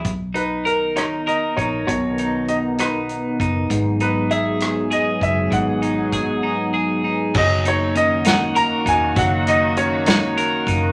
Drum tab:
CC |------|------|------|------|
HH |xxxxxx|xxxxxx|xxxxxx|xxx---|
SD |---r--|---r--|---r--|------|
BD |o----o|o----o|o----o|o-o---|

CC |x-----|------|
HH |-xxxxx|xxxxxx|
SD |---o--|---o--|
BD |o----o|o----o|